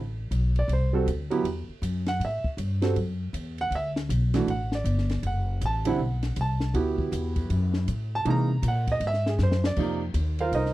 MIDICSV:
0, 0, Header, 1, 5, 480
1, 0, Start_track
1, 0, Tempo, 378072
1, 882, Time_signature, 4, 2, 24, 8
1, 13628, End_track
2, 0, Start_track
2, 0, Title_t, "Grand piano"
2, 0, Program_c, 0, 0
2, 747, Note_on_c, 0, 74, 84
2, 898, Note_off_c, 0, 74, 0
2, 928, Note_on_c, 0, 72, 70
2, 1180, Note_on_c, 0, 55, 68
2, 1190, Note_on_c, 0, 60, 59
2, 1197, Note_on_c, 0, 66, 60
2, 1201, Note_off_c, 0, 72, 0
2, 1202, Note_on_c, 0, 69, 72
2, 1342, Note_off_c, 0, 55, 0
2, 1347, Note_off_c, 0, 60, 0
2, 1351, Note_off_c, 0, 66, 0
2, 1353, Note_off_c, 0, 69, 0
2, 1655, Note_on_c, 0, 54, 77
2, 1667, Note_on_c, 0, 59, 70
2, 1673, Note_on_c, 0, 64, 64
2, 1677, Note_on_c, 0, 67, 78
2, 1820, Note_off_c, 0, 54, 0
2, 1825, Note_off_c, 0, 59, 0
2, 1829, Note_off_c, 0, 64, 0
2, 1831, Note_off_c, 0, 67, 0
2, 2644, Note_on_c, 0, 78, 95
2, 2807, Note_off_c, 0, 78, 0
2, 2852, Note_on_c, 0, 76, 73
2, 3124, Note_off_c, 0, 76, 0
2, 3575, Note_on_c, 0, 55, 61
2, 3583, Note_on_c, 0, 60, 60
2, 3592, Note_on_c, 0, 66, 59
2, 3597, Note_on_c, 0, 69, 71
2, 3740, Note_off_c, 0, 55, 0
2, 3745, Note_off_c, 0, 60, 0
2, 3749, Note_off_c, 0, 66, 0
2, 3751, Note_off_c, 0, 69, 0
2, 4584, Note_on_c, 0, 78, 101
2, 4738, Note_off_c, 0, 78, 0
2, 4766, Note_on_c, 0, 76, 79
2, 4936, Note_off_c, 0, 76, 0
2, 5510, Note_on_c, 0, 52, 69
2, 5512, Note_on_c, 0, 57, 61
2, 5523, Note_on_c, 0, 62, 60
2, 5533, Note_on_c, 0, 66, 73
2, 5668, Note_off_c, 0, 52, 0
2, 5669, Note_off_c, 0, 57, 0
2, 5675, Note_off_c, 0, 62, 0
2, 5680, Note_off_c, 0, 66, 0
2, 5717, Note_on_c, 0, 78, 76
2, 5997, Note_off_c, 0, 78, 0
2, 6029, Note_on_c, 0, 74, 63
2, 6621, Note_off_c, 0, 74, 0
2, 6686, Note_on_c, 0, 78, 73
2, 7114, Note_off_c, 0, 78, 0
2, 7181, Note_on_c, 0, 81, 91
2, 7431, Note_on_c, 0, 50, 67
2, 7439, Note_on_c, 0, 55, 63
2, 7449, Note_off_c, 0, 81, 0
2, 7450, Note_on_c, 0, 60, 65
2, 7453, Note_on_c, 0, 64, 76
2, 7475, Note_on_c, 0, 78, 68
2, 7589, Note_off_c, 0, 50, 0
2, 7593, Note_off_c, 0, 55, 0
2, 7599, Note_off_c, 0, 60, 0
2, 7600, Note_off_c, 0, 64, 0
2, 8064, Note_off_c, 0, 78, 0
2, 8136, Note_on_c, 0, 81, 87
2, 8558, Note_on_c, 0, 66, 59
2, 8560, Note_off_c, 0, 81, 0
2, 8567, Note_on_c, 0, 59, 54
2, 8578, Note_on_c, 0, 64, 55
2, 8583, Note_on_c, 0, 67, 67
2, 9896, Note_off_c, 0, 66, 0
2, 9901, Note_off_c, 0, 59, 0
2, 9906, Note_off_c, 0, 64, 0
2, 9908, Note_off_c, 0, 67, 0
2, 10351, Note_on_c, 0, 81, 97
2, 10477, Note_on_c, 0, 52, 64
2, 10486, Note_on_c, 0, 56, 53
2, 10494, Note_on_c, 0, 58, 57
2, 10501, Note_on_c, 0, 63, 63
2, 10502, Note_off_c, 0, 81, 0
2, 10542, Note_on_c, 0, 82, 100
2, 10755, Note_off_c, 0, 52, 0
2, 10759, Note_off_c, 0, 56, 0
2, 10763, Note_off_c, 0, 58, 0
2, 10767, Note_off_c, 0, 63, 0
2, 10962, Note_off_c, 0, 82, 0
2, 11021, Note_on_c, 0, 78, 86
2, 11288, Note_off_c, 0, 78, 0
2, 11320, Note_on_c, 0, 75, 87
2, 11466, Note_off_c, 0, 75, 0
2, 11516, Note_on_c, 0, 76, 95
2, 11776, Note_off_c, 0, 76, 0
2, 11792, Note_on_c, 0, 68, 56
2, 11942, Note_off_c, 0, 68, 0
2, 11976, Note_on_c, 0, 72, 84
2, 12246, Note_off_c, 0, 72, 0
2, 12264, Note_on_c, 0, 74, 83
2, 12405, Note_on_c, 0, 48, 55
2, 12412, Note_on_c, 0, 53, 50
2, 12423, Note_on_c, 0, 58, 52
2, 12428, Note_on_c, 0, 63, 60
2, 12678, Note_off_c, 0, 48, 0
2, 12682, Note_off_c, 0, 53, 0
2, 12687, Note_off_c, 0, 58, 0
2, 12690, Note_off_c, 0, 63, 0
2, 12694, Note_off_c, 0, 74, 0
2, 13211, Note_on_c, 0, 77, 85
2, 13218, Note_on_c, 0, 70, 64
2, 13218, Note_on_c, 0, 72, 67
2, 13225, Note_on_c, 0, 65, 65
2, 13371, Note_off_c, 0, 77, 0
2, 13375, Note_off_c, 0, 70, 0
2, 13375, Note_off_c, 0, 72, 0
2, 13379, Note_off_c, 0, 65, 0
2, 13389, Note_on_c, 0, 75, 75
2, 13396, Note_on_c, 0, 72, 58
2, 13398, Note_on_c, 0, 70, 65
2, 13400, Note_on_c, 0, 63, 60
2, 13628, Note_off_c, 0, 63, 0
2, 13628, Note_off_c, 0, 70, 0
2, 13628, Note_off_c, 0, 72, 0
2, 13628, Note_off_c, 0, 75, 0
2, 13628, End_track
3, 0, Start_track
3, 0, Title_t, "Upright bass"
3, 0, Program_c, 1, 32
3, 0, Note_on_c, 1, 33, 77
3, 383, Note_off_c, 1, 33, 0
3, 392, Note_on_c, 1, 35, 83
3, 854, Note_off_c, 1, 35, 0
3, 861, Note_on_c, 1, 36, 84
3, 1337, Note_off_c, 1, 36, 0
3, 1350, Note_on_c, 1, 38, 87
3, 1818, Note_off_c, 1, 38, 0
3, 1826, Note_on_c, 1, 40, 77
3, 2116, Note_off_c, 1, 40, 0
3, 2307, Note_on_c, 1, 42, 91
3, 2781, Note_off_c, 1, 42, 0
3, 2789, Note_on_c, 1, 45, 78
3, 3078, Note_off_c, 1, 45, 0
3, 3265, Note_on_c, 1, 43, 82
3, 3740, Note_off_c, 1, 43, 0
3, 3755, Note_on_c, 1, 42, 81
3, 4221, Note_off_c, 1, 42, 0
3, 4228, Note_on_c, 1, 40, 83
3, 4696, Note_off_c, 1, 40, 0
3, 4704, Note_on_c, 1, 38, 80
3, 5180, Note_off_c, 1, 38, 0
3, 5195, Note_on_c, 1, 35, 85
3, 5662, Note_off_c, 1, 35, 0
3, 5670, Note_on_c, 1, 33, 80
3, 6143, Note_off_c, 1, 33, 0
3, 6148, Note_on_c, 1, 31, 85
3, 6623, Note_off_c, 1, 31, 0
3, 6639, Note_on_c, 1, 30, 81
3, 7108, Note_off_c, 1, 30, 0
3, 7124, Note_on_c, 1, 33, 89
3, 7591, Note_off_c, 1, 33, 0
3, 7598, Note_on_c, 1, 35, 79
3, 8068, Note_off_c, 1, 35, 0
3, 8083, Note_on_c, 1, 36, 82
3, 8547, Note_off_c, 1, 36, 0
3, 8555, Note_on_c, 1, 38, 84
3, 9026, Note_off_c, 1, 38, 0
3, 9039, Note_on_c, 1, 40, 98
3, 9508, Note_off_c, 1, 40, 0
3, 9519, Note_on_c, 1, 42, 90
3, 9988, Note_off_c, 1, 42, 0
3, 10000, Note_on_c, 1, 45, 85
3, 10468, Note_off_c, 1, 45, 0
3, 10479, Note_on_c, 1, 48, 95
3, 10942, Note_off_c, 1, 48, 0
3, 10950, Note_on_c, 1, 46, 92
3, 11423, Note_off_c, 1, 46, 0
3, 11428, Note_on_c, 1, 44, 86
3, 11902, Note_off_c, 1, 44, 0
3, 11912, Note_on_c, 1, 42, 91
3, 12384, Note_off_c, 1, 42, 0
3, 12398, Note_on_c, 1, 41, 76
3, 12867, Note_off_c, 1, 41, 0
3, 12873, Note_on_c, 1, 39, 92
3, 13345, Note_off_c, 1, 39, 0
3, 13352, Note_on_c, 1, 36, 82
3, 13628, Note_off_c, 1, 36, 0
3, 13628, End_track
4, 0, Start_track
4, 0, Title_t, "Muted upright bass strokes"
4, 2132, Note_on_c, 9, 29, 39
4, 2259, Note_off_c, 9, 29, 0
4, 3099, Note_on_c, 9, 29, 35
4, 3226, Note_off_c, 9, 29, 0
4, 13628, End_track
5, 0, Start_track
5, 0, Title_t, "Drums"
5, 400, Note_on_c, 9, 44, 58
5, 400, Note_on_c, 9, 51, 66
5, 527, Note_off_c, 9, 44, 0
5, 527, Note_off_c, 9, 51, 0
5, 706, Note_on_c, 9, 51, 45
5, 833, Note_off_c, 9, 51, 0
5, 879, Note_on_c, 9, 51, 58
5, 1006, Note_off_c, 9, 51, 0
5, 1366, Note_on_c, 9, 44, 59
5, 1366, Note_on_c, 9, 51, 67
5, 1493, Note_off_c, 9, 44, 0
5, 1493, Note_off_c, 9, 51, 0
5, 1666, Note_on_c, 9, 51, 50
5, 1793, Note_off_c, 9, 51, 0
5, 1842, Note_on_c, 9, 51, 62
5, 1969, Note_off_c, 9, 51, 0
5, 2321, Note_on_c, 9, 44, 55
5, 2321, Note_on_c, 9, 51, 65
5, 2448, Note_off_c, 9, 44, 0
5, 2448, Note_off_c, 9, 51, 0
5, 2620, Note_on_c, 9, 51, 44
5, 2623, Note_on_c, 9, 38, 48
5, 2747, Note_off_c, 9, 51, 0
5, 2750, Note_off_c, 9, 38, 0
5, 2805, Note_on_c, 9, 51, 60
5, 2932, Note_off_c, 9, 51, 0
5, 3102, Note_on_c, 9, 36, 62
5, 3229, Note_off_c, 9, 36, 0
5, 3277, Note_on_c, 9, 44, 60
5, 3277, Note_on_c, 9, 51, 72
5, 3404, Note_off_c, 9, 44, 0
5, 3404, Note_off_c, 9, 51, 0
5, 3582, Note_on_c, 9, 51, 51
5, 3584, Note_on_c, 9, 38, 60
5, 3708, Note_off_c, 9, 51, 0
5, 3711, Note_off_c, 9, 38, 0
5, 3759, Note_on_c, 9, 51, 57
5, 3886, Note_off_c, 9, 51, 0
5, 4240, Note_on_c, 9, 44, 55
5, 4240, Note_on_c, 9, 51, 65
5, 4367, Note_off_c, 9, 44, 0
5, 4367, Note_off_c, 9, 51, 0
5, 4546, Note_on_c, 9, 51, 45
5, 4673, Note_off_c, 9, 51, 0
5, 4722, Note_on_c, 9, 51, 58
5, 4849, Note_off_c, 9, 51, 0
5, 5030, Note_on_c, 9, 38, 55
5, 5157, Note_off_c, 9, 38, 0
5, 5206, Note_on_c, 9, 44, 68
5, 5206, Note_on_c, 9, 51, 73
5, 5333, Note_off_c, 9, 44, 0
5, 5333, Note_off_c, 9, 51, 0
5, 5507, Note_on_c, 9, 51, 52
5, 5510, Note_on_c, 9, 38, 48
5, 5634, Note_off_c, 9, 51, 0
5, 5637, Note_off_c, 9, 38, 0
5, 5689, Note_on_c, 9, 51, 60
5, 5816, Note_off_c, 9, 51, 0
5, 5989, Note_on_c, 9, 38, 52
5, 6116, Note_off_c, 9, 38, 0
5, 6163, Note_on_c, 9, 44, 51
5, 6163, Note_on_c, 9, 51, 65
5, 6290, Note_off_c, 9, 44, 0
5, 6290, Note_off_c, 9, 51, 0
5, 6324, Note_on_c, 9, 38, 30
5, 6451, Note_off_c, 9, 38, 0
5, 6468, Note_on_c, 9, 51, 43
5, 6480, Note_on_c, 9, 38, 40
5, 6595, Note_off_c, 9, 51, 0
5, 6607, Note_off_c, 9, 38, 0
5, 6640, Note_on_c, 9, 51, 61
5, 6767, Note_off_c, 9, 51, 0
5, 7127, Note_on_c, 9, 44, 59
5, 7127, Note_on_c, 9, 51, 65
5, 7254, Note_off_c, 9, 44, 0
5, 7254, Note_off_c, 9, 51, 0
5, 7428, Note_on_c, 9, 51, 76
5, 7555, Note_off_c, 9, 51, 0
5, 7904, Note_on_c, 9, 51, 47
5, 7907, Note_on_c, 9, 38, 40
5, 8031, Note_off_c, 9, 51, 0
5, 8034, Note_off_c, 9, 38, 0
5, 8076, Note_on_c, 9, 44, 50
5, 8076, Note_on_c, 9, 51, 65
5, 8203, Note_off_c, 9, 44, 0
5, 8203, Note_off_c, 9, 51, 0
5, 8383, Note_on_c, 9, 38, 49
5, 8510, Note_off_c, 9, 38, 0
5, 8563, Note_on_c, 9, 51, 64
5, 8690, Note_off_c, 9, 51, 0
5, 8865, Note_on_c, 9, 36, 64
5, 8992, Note_off_c, 9, 36, 0
5, 9046, Note_on_c, 9, 44, 69
5, 9046, Note_on_c, 9, 51, 70
5, 9173, Note_off_c, 9, 44, 0
5, 9173, Note_off_c, 9, 51, 0
5, 9343, Note_on_c, 9, 51, 54
5, 9346, Note_on_c, 9, 36, 56
5, 9470, Note_off_c, 9, 51, 0
5, 9473, Note_off_c, 9, 36, 0
5, 9522, Note_on_c, 9, 51, 67
5, 9649, Note_off_c, 9, 51, 0
5, 9820, Note_on_c, 9, 38, 45
5, 9947, Note_off_c, 9, 38, 0
5, 10001, Note_on_c, 9, 44, 60
5, 10001, Note_on_c, 9, 51, 65
5, 10128, Note_off_c, 9, 44, 0
5, 10128, Note_off_c, 9, 51, 0
5, 10479, Note_on_c, 9, 51, 63
5, 10606, Note_off_c, 9, 51, 0
5, 10955, Note_on_c, 9, 44, 67
5, 10955, Note_on_c, 9, 51, 79
5, 11082, Note_off_c, 9, 44, 0
5, 11082, Note_off_c, 9, 51, 0
5, 11267, Note_on_c, 9, 36, 55
5, 11267, Note_on_c, 9, 51, 54
5, 11394, Note_off_c, 9, 36, 0
5, 11394, Note_off_c, 9, 51, 0
5, 11432, Note_on_c, 9, 51, 66
5, 11559, Note_off_c, 9, 51, 0
5, 11600, Note_on_c, 9, 38, 30
5, 11727, Note_off_c, 9, 38, 0
5, 11761, Note_on_c, 9, 38, 48
5, 11888, Note_off_c, 9, 38, 0
5, 11916, Note_on_c, 9, 44, 47
5, 11919, Note_on_c, 9, 38, 50
5, 12043, Note_off_c, 9, 44, 0
5, 12046, Note_off_c, 9, 38, 0
5, 12083, Note_on_c, 9, 38, 63
5, 12209, Note_off_c, 9, 38, 0
5, 12238, Note_on_c, 9, 38, 79
5, 12365, Note_off_c, 9, 38, 0
5, 12397, Note_on_c, 9, 49, 71
5, 12404, Note_on_c, 9, 36, 65
5, 12524, Note_off_c, 9, 49, 0
5, 12531, Note_off_c, 9, 36, 0
5, 12875, Note_on_c, 9, 44, 51
5, 12875, Note_on_c, 9, 51, 71
5, 13002, Note_off_c, 9, 44, 0
5, 13002, Note_off_c, 9, 51, 0
5, 13187, Note_on_c, 9, 51, 50
5, 13314, Note_off_c, 9, 51, 0
5, 13364, Note_on_c, 9, 51, 64
5, 13491, Note_off_c, 9, 51, 0
5, 13533, Note_on_c, 9, 38, 26
5, 13628, Note_off_c, 9, 38, 0
5, 13628, End_track
0, 0, End_of_file